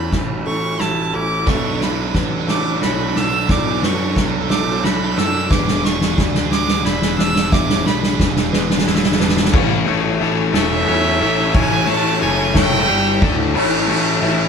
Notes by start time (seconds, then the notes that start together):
Already playing: E2 A2 E3 G#3 C#4 E4 C#5 B5
0.12 A1 E3, kick, snare, ride
0.46 A1 A4 C#6, ride
0.80 A1 E4 A5, snare, ride
1.13 A1 C#4 A4 D6, ride
1.46 B1 B2 B3 D4 A4 C#6, kick, snare, crash
1.54 D4 A4
1.62 D4 A4
1.69 D4 A4
1.76 D4 A4
1.81 F#3 D4 B5, snare, ride
1.86 A4
1.92 D4 A4
2.01 D4 A4
2.07 D4 A4
2.14 A1 F#3 D4 A4 B4, kick, snare, ride
2.24 D4 A4
2.32 D4 A4
2.39 D4 A4
2.47 A3 D4 A4 D6, snare, ride
2.54 D4 A4
2.61 D4 A4
2.70 D4 A4
2.77 D4 A4
2.82 B1 D4 F#4 C#5 B5, snare, ride
2.87 A4
2.94 D4 A4
3.02 D4 A4
3.08 D4 A4
3.15 B1 D4 A4 E6, snare, ride
3.24 D4 A4
3.31 D4 A4
3.39 D4 A4
3.48 B1 B2 D4 A4 D5 D6, kick, snare, ride
3.55 D4 A4
3.63 D4 A4
3.71 D4 A4
3.79 F#3 D4 A4 B4, snare, ride
3.83 F#2 D4 C#6
3.88 A4
3.95 D4 A4
4.02 D4 A4
4.09 D4 A4
4.16 B1 F#3 D4 A4, kick, snare, ride
4.26 D4 A4
4.32 D4 A4
4.42 D4 A4
4.49 B1 A3 D4 A4 D6, snare, ride
4.56 D4 A4
4.64 D4 A4
4.71 D4 A4
4.80 B1 D4 F#4 A4 B5
4.84 D4, snare, ride
4.89 A4
4.95 D4 A4
5.04 D4 A4
5.10 D4 A4
5.17 F#2 D4 A4 E6, snare, ride
5.25 D4 A4
5.34 D4 A4
5.41 D4 A4
5.50 E1 E2 E3 D4 G#4 B4 D6, kick, snare
5.58 D4 G#4
5.66 D4 G#4, snare
5.73 D4 G#4
5.83 B2 D4 G#4 C#6, snare
5.88 D4 G#4
5.96 D4 G#4
6.01 D4, snare
6.06 G#4
6.12 D4 G#4
6.17 D2 E3 D4 G#4 D5, kick, snare
6.28 D4 G#4
6.34 D4 G#4, snare
6.42 D4 G#4
6.50 G#3 D4 G#4 D6, snare
6.58 D4 G#4
6.66 D4 G#4, snare
6.74 D4 G#4
6.81 E1 D4 G#4 D5 B5, snare
6.85 D4 E4
6.90 G#4
6.98 D4 G#4
7.02 D4 G#4, snare
7.12 D4 G#4
7.19 E1 D4 G#4 E6, snare
7.28 D4 G#4
7.36 D4 G#4, snare
7.44 D4 G#4
7.52 E1 E2 D4 G#4 E5 D6, kick, snare
7.60 D4 G#4
7.68 D4 G#4, snare
7.76 D4 G#4
7.84 B1 B2 D4 G#4 C#5 B5, snare
7.91 D4 G#4
7.99 D4 G#4
8.03 D4 G#4, snare
8.14 D4 G#4
8.19 E1 E3 D4 G#4, kick, snare
8.29 D4 G#4
8.36 D4 G#4, snare
8.45 D4 G#4
8.53 E1 G#3 D4 G#4 B4, snare
8.60 D4 G#4
8.68 D4 G#4, snare
8.77 D4 G#4, snare
8.84 E1 D4 E4 G#4, snare
8.92 D4 G#4, snare
8.98 D4 G#4
9.03 snare
9.07 D4 G#4
9.12 D4 G#4, snare
9.20 E1 D4 B4, snare
9.24 G#4
9.28 D4 G#4, snare
9.37 D4 G#4, snare
9.45 D4 G#4, snare
9.53 A1 A2 A3 C#4 E4 A4 C#5 E5 C#6, kick, crash
9.87 A1 A3 C#4 E4 A4 C#5, ride
10.20 A1 E3 A3 C#4 E4 A4 C#5 E5, ride
10.53 E1 A3 C#4 E4 A4 C#5 E5, snare, ride
10.87 E2 A3 C#4 E4 A4 C#5, ride
11.20 A1 A3 C#4 E4 A4 C#5, ride
11.54 A1 A2 A3 C#4 E4 A4 C#5 G#5, kick, ride
11.87 A1 A3 C#4 E4 A4 C#5 A5, ride
12.21 F#1 E3 A3 C#4 E4 A4 C#5 G#5, ride
12.54 A3 C#4 E4 A4 C#5 G5, kick, snare, ride
12.88 G1 G3 D4 G4 D5, ride
13.21 D2 D3 A3 D4 A4, kick, ride
13.54 A1 A2 A3 C#4 E4 A4 C#5 G#5 C#6, ride
13.88 A1 A3 C#4 E4 A4, ride
14.21 A1 E3 A3 C#4 E4 A4 E5, ride